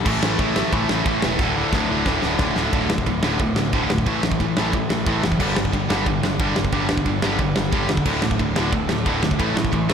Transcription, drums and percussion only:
0.06 kick loud
0.06 crash loud
0.23 snare loud
0.39 kick loud
0.39 ride medium
0.56 snare loud
0.73 kick loud
0.73 ride medium
0.89 snare loud
1.06 kick loud
1.06 ride medium
1.22 snare loud
1.39 kick loud
1.39 snare medium
1.73 kick loud
1.73 snare medium
2.06 kick loud
2.06 snare medium
2.22 snare medium
2.39 kick loud
2.39 snare loud
2.56 snare loud
2.73 kick loud
2.73 ride medium
2.90 snare loud
2.98 kick loud
3.06 kick medium
3.06 ride medium
3.23 snare loud
3.39 kick loud
3.39 ride medium
3.56 snare loud
3.73 kick loud
3.73 ride medium
3.90 snare loud
3.98 kick medium
4.06 kick loud
4.06 ride medium
4.23 snare loud
4.32 kick loud
4.40 kick medium
4.40 ride medium
4.57 snare loud
4.73 kick loud
4.73 ride medium
4.90 snare loud
5.06 kick loud
5.06 ride medium
5.24 snare loud
5.32 kick medium
5.40 kick loud
5.40 crash loud
5.56 snare loud
5.65 kick medium
5.73 kick medium
5.73 ride medium
5.90 snare loud
6.06 kick loud
6.06 ride medium
6.23 snare loud
6.40 kick loud
6.40 ride medium
6.56 snare loud
6.64 kick medium
6.72 kick loud
6.72 ride medium
6.89 snare loud
6.98 kick medium
7.06 kick medium
7.06 ride medium
7.22 snare loud
7.39 kick loud
7.39 ride medium
7.56 snare loud
7.72 kick loud
7.72 ride medium
7.89 snare loud
7.97 kick medium
8.06 kick loud
8.06 crash loud
8.22 snare loud
8.31 kick medium
8.39 kick medium
8.39 ride medium
8.56 snare loud
8.73 kick loud
8.73 ride medium
8.89 snare loud
9.06 kick loud
9.06 ride medium
9.23 snare loud
9.31 kick medium
9.40 kick loud
9.40 ride medium
9.57 snare loud
9.65 kick medium
9.73 kick medium
9.73 ride medium
9.90 snare loud

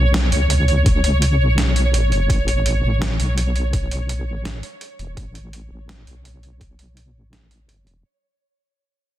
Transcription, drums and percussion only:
0.14 snare loud
0.14 closed hi-hat medium
0.32 closed hi-hat medium
0.50 closed hi-hat medium
0.68 closed hi-hat soft
0.86 kick loud
0.86 closed hi-hat medium
1.04 closed hi-hat medium
1.22 closed hi-hat medium
1.58 snare loud
1.58 closed hi-hat medium
1.76 closed hi-hat medium
1.94 closed hi-hat medium
2.12 closed hi-hat soft
2.30 kick loud
2.30 closed hi-hat medium
2.48 closed hi-hat medium
2.66 closed hi-hat medium
3.02 snare loud
3.02 closed hi-hat medium
3.20 closed hi-hat medium
3.38 closed hi-hat medium
3.56 closed hi-hat soft
3.73 kick loud
3.73 closed hi-hat medium
3.91 closed hi-hat medium
4.09 closed hi-hat medium
4.45 snare loud
4.45 closed hi-hat medium
4.63 closed hi-hat medium
4.81 closed hi-hat medium
4.99 closed hi-hat soft
5.17 kick loud
5.17 closed hi-hat medium
5.35 closed hi-hat medium
5.53 closed hi-hat medium
5.89 snare loud
5.89 closed hi-hat medium
6.07 closed hi-hat medium
6.25 closed hi-hat medium
6.43 closed hi-hat soft
6.61 kick loud
6.61 closed hi-hat medium
6.79 closed hi-hat medium
6.97 closed hi-hat medium
7.33 snare loud
7.33 closed hi-hat medium
7.51 closed hi-hat medium
7.69 closed hi-hat medium
7.87 closed hi-hat soft

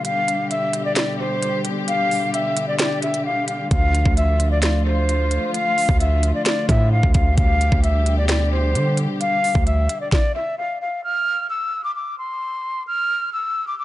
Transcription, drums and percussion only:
0.05 closed hi-hat medium
0.28 closed hi-hat medium
0.51 closed hi-hat medium
0.73 closed hi-hat medium
0.96 finger snap medium
0.96 snare loud
0.96 closed hi-hat medium
1.43 closed hi-hat medium
1.65 closed hi-hat medium
1.88 closed hi-hat medium
2.11 open hi-hat medium
2.34 closed hi-hat medium
2.57 closed hi-hat medium
2.79 finger snap medium
2.79 snare loud
2.79 closed hi-hat medium
3.02 closed hi-hat medium
3.14 closed hi-hat soft
3.48 closed hi-hat medium
3.71 kick loud
3.71 closed hi-hat medium
3.95 closed hi-hat medium
4.06 kick medium
4.17 closed hi-hat medium
4.40 closed hi-hat medium
4.62 finger snap medium
4.62 snare loud
4.62 closed hi-hat medium
5.09 closed hi-hat medium
5.31 closed hi-hat medium
5.54 closed hi-hat medium
5.78 open hi-hat medium
5.89 kick medium
6.00 closed hi-hat medium
6.23 closed hi-hat medium
6.46 finger snap medium
6.46 snare loud
6.46 closed hi-hat medium
6.69 kick medium
6.69 closed hi-hat medium
7.03 kick loud
7.14 kick loud
7.14 closed hi-hat medium
7.38 kick loud
7.38 closed hi-hat medium
7.61 closed hi-hat medium
7.72 kick medium
7.84 closed hi-hat medium
8.06 closed hi-hat medium
8.29 finger snap medium
8.29 snare loud
8.29 closed hi-hat medium
8.75 closed hi-hat medium
8.97 closed hi-hat medium
9.21 closed hi-hat medium
9.44 open hi-hat medium
9.55 kick medium
9.67 closed hi-hat medium
9.89 closed hi-hat medium
10.12 kick loud
10.12 snare medium

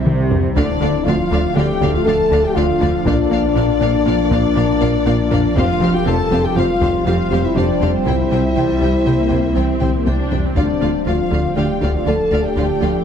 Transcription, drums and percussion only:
0.06 taiko mid medium
0.31 taiko low loud
0.56 taiko loud
1.81 taiko medium
2.81 taiko low soft
3.05 taiko loud
4.31 taiko medium
5.31 taiko low soft
5.56 taiko medium
6.81 taiko medium
7.81 taiko low soft
8.06 taiko medium
9.31 taiko medium
9.81 taiko mid medium
10.06 taiko high medium
10.31 taiko low medium
10.56 taiko medium
11.81 taiko medium

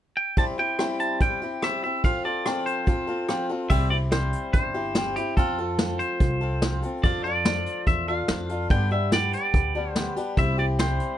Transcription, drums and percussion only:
0.37 kick medium
0.37 closed hi-hat soft
0.79 cross-stick loud
0.79 closed hi-hat soft
1.00 closed hi-hat medium
1.20 kick medium
1.20 closed hi-hat medium
1.62 cross-stick loud
1.62 closed hi-hat medium
2.04 kick medium
2.04 closed hi-hat soft
2.46 cross-stick loud
2.46 closed hi-hat medium
2.66 closed hi-hat medium
2.87 kick medium
2.87 closed hi-hat medium
3.29 cross-stick medium
3.29 closed hi-hat soft
3.70 kick loud
3.70 crash medium
4.12 snare loud
4.12 closed hi-hat medium
4.33 closed hi-hat medium
4.54 kick loud
4.54 closed hi-hat medium
4.95 snare loud
4.95 closed hi-hat medium
5.16 closed hi-hat medium
5.37 kick medium
5.37 closed hi-hat medium
5.79 snare loud
5.79 closed hi-hat medium
5.99 closed hi-hat medium
6.20 kick loud
6.20 closed hi-hat medium
6.62 snare loud
6.62 closed hi-hat medium
6.83 closed hi-hat medium
7.04 kick loud
7.04 closed hi-hat medium
7.45 snare loud
7.45 closed hi-hat medium
7.66 closed hi-hat medium
7.87 kick medium
7.87 closed hi-hat medium
8.28 snare medium
8.28 closed hi-hat medium
8.49 closed hi-hat medium
8.70 kick loud
8.70 closed hi-hat medium
9.12 snare medium
9.12 closed hi-hat medium
9.33 closed hi-hat medium
9.54 kick loud
9.54 closed hi-hat medium
9.96 snare medium
9.96 closed hi-hat medium
10.17 closed hi-hat medium
10.37 kick loud
10.37 closed hi-hat medium
10.79 snare loud
10.79 closed hi-hat medium
11.00 closed hi-hat medium

